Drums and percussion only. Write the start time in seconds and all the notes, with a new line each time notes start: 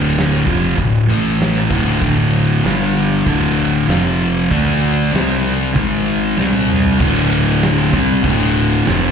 0.17 snare, open hi-hat
0.47 kick, open hi-hat
0.78 kick, open hi-hat
1.09 open hi-hat
1.40 snare, open hi-hat
1.70 kick, open hi-hat
2.01 kick, open hi-hat
2.33 open hi-hat
2.64 snare, open hi-hat
2.95 open hi-hat
3.27 kick, open hi-hat
3.58 open hi-hat
3.88 snare, open hi-hat
4.21 open hi-hat
4.51 kick, open hi-hat
4.84 open hi-hat
5.14 snare, open hi-hat
5.45 open hi-hat
5.76 kick, open hi-hat
6.08 open hi-hat
6.40 snare
6.53 high tom
6.69 mid tom
6.86 floor tom
7.00 kick, crash
7.61 snare, open hi-hat
7.80 snare
7.93 kick, snare
8.24 kick, open hi-hat
8.85 snare, open hi-hat